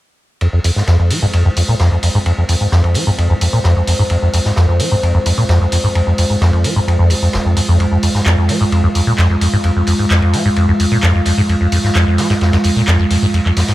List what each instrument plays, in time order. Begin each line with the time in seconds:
0.41 acid bass F2, analog synth pad G#3 F4 C5, ride
0.53 acid bass F2
0.64 acid bass F2, open hi-hat, ride
0.76 acid bass G#2, snare
0.87 acid bass F2, snare, ride
0.99 acid bass F2
1.10 acid bass F3, open hi-hat, ride
1.22 acid bass G#2
1.33 acid bass F2, ride
1.45 acid bass F2
1.57 acid bass F2, open hi-hat, ride
1.69 acid bass A#2
1.79 acid bass F2, snare, ride
1.92 acid bass F2
2.03 acid bass F2, open hi-hat, ride
2.15 acid bass G#2
2.26 acid bass F2, ride
2.38 acid bass F2
2.49 acid bass F2, open hi-hat, ride
2.61 acid bass G#2
2.72 acid bass F2, snare, ride
2.84 acid bass F2, ride
2.94 acid bass F3, open hi-hat, ride
3.07 acid bass G#2
3.18 acid bass F2, ride
3.30 acid bass F2
3.41 acid bass F2, open hi-hat, ride
3.53 acid bass A#2
3.64 acid bass F2, snare, ride
3.76 acid bass F2
3.87 acid bass F2, open hi-hat, ride
3.99 acid bass G#2
4.10 acid bass F2, ride
4.22 acid bass F2
4.34 acid bass F2, open hi-hat, ride
4.45 acid bass G#2, snare
4.56 acid bass F2, snare, ride
4.69 acid bass F2
4.80 acid bass F3, open hi-hat, ride
4.92 acid bass G#2
5.03 acid bass F2, ride
5.15 acid bass F2
5.26 acid bass F2, open hi-hat, ride
5.38 acid bass A#2
5.49 acid bass F2, snare, ride
5.61 acid bass F2
5.72 acid bass F2, open hi-hat, ride
5.84 acid bass G#2
5.95 acid bass F2, ride
6.07 acid bass F2
6.18 acid bass F2, open hi-hat, ride
6.30 acid bass G#2
6.41 acid bass F2, snare, ride
6.53 acid bass F2, ride
6.64 acid bass F3, open hi-hat, ride
6.76 acid bass G#2
6.87 acid bass F2, ride
6.99 acid bass F2
7.10 acid bass D#2, open hi-hat, ride
7.22 acid bass F2
7.33 acid bass F1, snare, ride
7.45 acid bass F2
7.57 acid bass F2, open hi-hat, ride
7.68 acid bass F2
7.80 analog synth pad F5, ride
7.92 acid bass F2
8.03 acid bass F2, open hi-hat, ride
8.15 acid bass G#2, snare
8.26 acid bass F2, snare, clap, ride
8.38 acid bass F2
8.49 acid bass F3, open hi-hat, ride
8.61 acid bass G#2
8.72 acid bass F2, ride
8.84 acid bass F2
8.95 acid bass F2, open hi-hat, ride
9.07 acid bass A#2
9.18 acid bass F2, snare, clap, ride
9.30 acid bass F2
9.41 acid bass F2, open hi-hat, ride
9.53 acid bass G#2
9.64 acid bass F2, ride
9.76 acid bass F2
9.87 acid bass F2, open hi-hat, ride
9.99 acid bass G#2
10.10 acid bass F2, snare, clap, ride
10.22 acid bass F2, ride
10.33 acid bass F3, open hi-hat, ride
10.45 acid bass G#2
10.56 acid bass F2, ride
10.68 acid bass F2
10.80 acid bass F2, open hi-hat, ride
10.92 acid bass A#2
11.02 acid bass F2, snare, clap, ride
11.15 acid bass F2
11.25 acid bass F2, open hi-hat, ride
11.38 acid bass G#2
11.49 acid bass F2, ride
11.61 acid bass F2
11.72 acid bass F2, open hi-hat, ride
11.84 acid bass G#2, snare
11.95 acid bass F2, snare, clap, ride
12.07 acid bass F2
12.18 acid bass F3, snare, open hi-hat, ride
12.30 acid bass G#2, snare, ride
12.41 acid bass F2, snare, ride
12.52 acid bass F2, snare, ride
12.64 acid bass F2, open hi-hat, ride
12.76 acid bass A#2
12.87 acid bass F2, snare, clap, ride
12.99 acid bass F2
13.10 acid bass F2, open hi-hat, ride
13.22 acid bass G#2
13.34 acid bass F2, ride
13.45 acid bass F2, clap
13.57 acid bass F2, snare, open hi-hat, ride
13.68 acid bass G#2, snare, ride